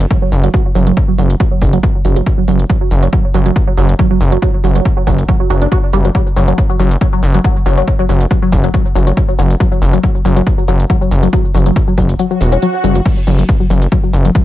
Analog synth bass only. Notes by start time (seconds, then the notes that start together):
0.32 F#1
0.75 F#1
1.18 F#1
1.62 F#1
2.05 F#1
2.48 F#1
2.91 F#1
3.34 F#1
3.77 F#1
4.21 F#1
4.64 F#1
5.07 F#1
5.50 F#1
5.93 F#1
6.36 F#1
6.80 F#1
7.23 F#1
7.66 F#1
8.09 F#1
8.52 F#1
8.95 F#1
9.39 F#1
9.82 F#1
10.25 F#1
10.68 F#1
11.11 F#1
11.54 F#1
11.98 F#1
12.41 E1
12.84 F#1
13.27 F#1
13.70 F#1
14.13 F#1